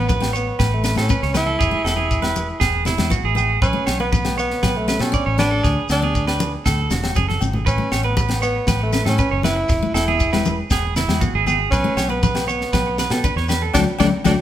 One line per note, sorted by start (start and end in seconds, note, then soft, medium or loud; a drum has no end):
0.00 0.50 A1 medium
0.00 0.17 B3 medium
0.00 0.32 B3 medium
0.09 0.33 B4 medium
0.09 kick medium
0.09 high conga medium
0.09 shekere medium
0.20 0.42 A3 medium
0.20 snare medium
0.20 low agogo medium
0.33 0.70 B3 medium
0.33 0.58 C#5 medium
0.33 muted conga soft
0.33 shekere medium
0.59 0.93 A1 medium
0.59 0.83 B4 medium
0.59 kick medium
0.59 snare medium
0.59 muted conga soft
0.59 high conga medium
0.59 low agogo medium
0.59 shekere medium
0.74 1.01 A3 medium
0.84 0.95 C#4 medium
0.84 0.97 B4 medium
0.84 snare medium
0.84 muted conga soft
0.84 shekere medium
0.95 1.08 A2 medium
0.95 1.07 A3 medium
0.95 1.09 A4 medium
0.95 snare medium
0.95 low agogo medium
1.00 1.36 C#4 medium
1.09 1.31 C#4 medium
1.09 1.22 B4 medium
1.09 kick medium
1.09 shekere medium
1.23 1.56 C#2 medium
1.23 1.34 C#5 medium
1.23 snare soft
1.34 1.56 B3 medium
1.34 1.83 E4 loud
1.34 1.46 B4 medium
1.34 snare medium
1.34 high conga medium
1.34 low agogo medium
1.34 shekere medium
1.47 1.58 A4 medium
1.59 1.72 E1 medium
1.59 1.84 G#4 medium
1.59 kick medium
1.59 shekere medium
1.71 1.93 A3 medium
1.84 2.51 E1 medium
1.84 2.59 E4 medium
1.84 1.96 A4 medium
1.84 snare medium
1.84 low agogo medium
1.84 shekere medium
1.96 2.19 B3 medium
1.96 2.21 G#4 medium
2.11 kick medium
2.11 shekere medium
2.22 2.44 G#3 medium
2.22 2.47 B4 medium
2.22 snare medium
2.22 low agogo medium
2.36 high conga medium
2.36 shekere medium
2.60 2.95 E1 medium
2.60 2.85 G#4 medium
2.60 kick medium
2.60 snare medium
2.60 muted conga soft
2.60 low agogo medium
2.60 shekere medium
2.85 2.97 B3 medium
2.85 3.11 E4 medium
2.85 snare medium
2.85 muted conga soft
2.85 low conga medium
2.85 shekere medium
2.98 3.10 E2 medium
2.98 3.09 G#3 medium
2.98 snare medium
2.98 low agogo medium
3.10 3.32 B3 medium
3.10 3.24 F#4 medium
3.10 kick medium
3.10 high conga medium
3.10 shekere medium
3.24 3.57 A1 medium
3.24 3.35 G#4 medium
3.35 3.57 B3 medium
3.35 3.61 G#4 medium
3.35 high conga medium
3.35 low agogo medium
3.35 shekere medium
3.62 3.73 B1 loud
3.62 3.98 C#4 medium
3.62 3.86 B4 medium
3.62 kick medium
3.62 muted conga soft
3.62 shekere medium
3.73 3.95 A3 medium
3.87 4.54 B1 medium
3.87 3.99 C#5 medium
3.87 snare medium
3.87 low agogo medium
3.87 shekere medium
4.00 4.21 B3 medium
4.00 4.35 B3 medium
4.00 4.11 B4 medium
4.12 4.37 B4 medium
4.12 kick medium
4.12 high conga medium
4.12 shekere medium
4.25 4.47 A3 medium
4.25 snare medium
4.25 low agogo medium
4.38 4.78 B3 medium
4.38 4.62 C#5 medium
4.38 muted conga soft
4.38 shekere medium
4.51 snare soft
4.63 4.97 B1 medium
4.63 4.87 B4 medium
4.63 kick medium
4.63 snare medium
4.63 muted conga soft
4.63 high conga medium
4.63 low agogo medium
4.63 shekere medium
4.76 5.02 A3 medium
4.88 4.99 C#4 medium
4.88 5.01 B4 medium
4.88 snare medium
4.88 muted conga soft
4.88 shekere medium
4.99 5.12 B2 medium
4.99 5.11 B3 medium
4.99 5.38 C#4 medium
4.99 5.13 A4 medium
4.99 snare medium
4.99 low agogo medium
5.12 5.34 D4 medium
5.12 5.26 D5 medium
5.12 kick medium
5.12 shekere medium
5.26 5.60 A1 medium
5.26 5.38 C#5 medium
5.38 5.60 D4 medium
5.38 5.86 D4 loud
5.38 5.51 B4 medium
5.38 snare medium
5.38 high conga medium
5.38 low agogo medium
5.38 shekere medium
5.51 5.63 A4 medium
5.63 5.76 D2 loud
5.63 5.88 G#4 medium
5.63 kick medium
5.63 snare soft
5.63 shekere medium
5.89 6.56 D2 medium
5.89 6.63 D4 medium
5.89 6.02 A4 medium
5.89 snare medium
5.89 low agogo medium
5.89 shekere medium
6.02 6.24 B3 medium
6.02 6.27 G#4 medium
6.15 kick medium
6.15 shekere medium
6.27 6.52 B4 medium
6.27 snare medium
6.27 low agogo medium
6.40 muted conga soft
6.40 high conga medium
6.40 shekere medium
6.66 6.88 D2 medium
6.66 6.90 A4 medium
6.66 kick medium
6.66 snare medium
6.66 muted conga soft
6.66 low agogo medium
6.66 shekere medium
6.90 7.14 E1 medium
6.90 7.02 D4 medium
6.90 7.15 F#4 medium
6.90 snare medium
6.90 muted conga soft
6.90 low conga medium
6.90 shekere medium
7.03 7.14 B3 medium
7.03 snare medium
7.03 high conga soft
7.03 low agogo medium
7.15 7.39 F#1 medium
7.15 7.38 C#4 medium
7.15 7.28 G#4 medium
7.15 kick medium
7.15 high conga medium
7.15 shekere medium
7.28 7.41 A4 medium
7.28 snare soft
7.28 high conga medium
7.41 7.65 G#1 medium
7.41 7.63 C#4 medium
7.41 low conga medium
7.41 low agogo medium
7.41 shekere medium
7.53 low conga medium
7.66 7.78 A1 medium
7.66 8.06 C#4 medium
7.66 7.91 B4 medium
7.66 kick medium
7.66 muted conga soft
7.66 shekere loud
7.78 8.00 A3 medium
7.92 8.59 A1 medium
7.92 8.04 C#5 medium
7.92 snare medium
7.92 low agogo medium
7.92 shekere medium
8.03 8.25 B3 medium
8.03 8.42 B3 medium
8.03 8.16 B4 medium
8.17 8.41 B4 medium
8.17 kick medium
8.17 high conga medium
8.17 shekere medium
8.29 8.51 A3 medium
8.29 snare medium
8.29 low agogo medium
8.42 8.78 B3 medium
8.42 8.67 C#5 medium
8.42 muted conga soft
8.42 shekere medium
8.67 9.01 A1 medium
8.67 8.92 B4 medium
8.67 kick medium
8.67 snare medium
8.67 muted conga soft
8.67 high conga medium
8.67 low agogo medium
8.67 shekere medium
8.83 9.06 A3 medium
8.92 9.04 C#4 medium
8.92 9.05 B4 medium
8.92 snare medium
8.92 muted conga soft
8.92 shekere medium
9.05 9.17 A2 medium
9.05 9.17 A3 medium
9.05 9.43 C#4 medium
9.05 9.18 A4 medium
9.05 snare medium
9.05 low agogo medium
9.18 9.40 C#4 medium
9.18 9.31 B4 medium
9.18 kick medium
9.18 shekere medium
9.31 9.65 F#1 medium
9.31 9.44 C#5 medium
9.43 9.66 C#4 medium
9.43 9.91 E4 loud
9.43 9.56 B4 medium
9.43 snare medium
9.43 high conga medium
9.43 low agogo medium
9.43 shekere medium
9.56 muted clean electric guitar stroke medium
9.69 9.81 E1 medium
9.69 muted clean electric guitar stroke medium
9.69 kick medium
9.69 snare soft
9.69 muted conga soft
9.69 shekere medium
9.83 10.04 A3 medium
9.94 10.61 E1 medium
9.94 10.67 E4 medium
9.94 10.07 A4 medium
9.94 snare medium
9.94 low agogo medium
9.94 shekere medium
10.08 10.29 B3 medium
10.08 10.32 G#4 medium
10.20 kick medium
10.20 shekere medium
10.33 10.54 G#3 medium
10.33 10.57 B4 medium
10.33 snare medium
10.33 low agogo medium
10.45 muted conga soft
10.45 high conga medium
10.45 shekere medium
10.70 11.04 E1 medium
10.70 10.95 G#4 medium
10.70 kick medium
10.70 snare medium
10.70 muted conga soft
10.70 low agogo medium
10.70 shekere medium
10.96 11.07 B3 medium
10.96 11.20 E4 medium
10.96 snare medium
10.96 muted conga soft
10.96 low conga medium
10.96 shekere medium
11.08 11.20 E2 medium
11.08 11.20 G#3 medium
11.08 snare medium
11.08 low agogo medium
11.21 11.43 B3 medium
11.21 11.33 F#4 medium
11.21 kick medium
11.21 high conga medium
11.21 shekere medium
11.34 11.67 G#1 medium
11.34 11.46 G#4 medium
11.46 11.68 B3 medium
11.46 11.71 G#4 medium
11.46 high conga medium
11.46 low agogo medium
11.46 shekere medium
11.70 11.83 B1 loud
11.70 12.10 C#4 loud
11.70 11.97 B4 medium
11.70 kick medium
11.70 snare soft
11.70 shekere medium
11.84 12.06 A3 medium
11.97 12.64 B1 medium
11.97 12.09 C#5 medium
11.97 snare medium
11.97 low agogo medium
11.97 shekere medium
12.09 12.47 B3 medium
12.09 12.31 B3 medium
12.09 12.22 B4 medium
12.23 12.47 B4 medium
12.23 kick medium
12.23 high conga medium
12.23 shekere medium
12.35 12.56 A3 medium
12.35 snare medium
12.35 low agogo medium
12.47 13.45 B3 medium
12.47 12.72 C#5 medium
12.47 muted conga soft
12.47 shekere medium
12.61 snare soft
12.73 13.07 B1 medium
12.73 12.97 B4 medium
12.73 kick medium
12.73 snare medium
12.73 muted conga soft
12.73 high conga medium
12.73 low agogo medium
12.73 shekere medium
12.98 13.11 B4 medium
12.98 muted steel-string acoustic guitar stroke medium
12.98 snare medium
12.98 muted conga soft
12.98 shekere medium
13.10 13.22 B2 medium
13.10 13.22 B3 medium
13.10 13.23 A4 medium
13.10 snare medium
13.10 low agogo medium
13.24 13.45 D4 medium
13.24 13.36 B4 medium
13.24 kick medium
13.24 shekere medium
13.36 13.70 E2 medium
13.36 13.49 C#5 medium
13.36 snare soft
13.49 13.71 D4 medium
13.49 13.62 B4 medium
13.49 snare medium
13.49 high conga medium
13.49 low agogo medium
13.49 shekere medium
13.62 13.74 A4 medium
13.74 13.84 D2 medium
13.74 13.83 F#3 medium
13.74 13.83 A3 medium
13.74 13.80 D4 medium
13.74 13.83 D4 medium
13.74 13.83 F#4 medium
13.74 13.83 A4 medium
13.74 13.83 D5 medium
13.74 kick medium
13.74 snare medium
13.74 high conga medium
13.74 low agogo medium
13.74 shekere medium
13.99 14.10 D2 medium
13.99 14.08 F#3 medium
13.99 14.08 A3 medium
13.99 14.08 D4 loud
13.99 14.06 D4 medium
13.99 14.08 F#4 medium
13.99 14.08 A4 medium
13.99 14.08 D5 medium
13.99 kick medium
13.99 snare medium
13.99 high conga medium
13.99 low agogo medium
13.99 shekere medium
14.24 14.35 D2 medium
14.24 14.33 F#3 medium
14.24 14.33 A3 medium
14.24 14.33 D4 medium
14.24 14.32 D4 medium
14.24 14.34 F#4 medium
14.24 14.34 A4 medium
14.24 14.34 D5 medium
14.24 kick medium
14.24 snare medium
14.24 high conga medium
14.24 low agogo loud
14.24 shekere loud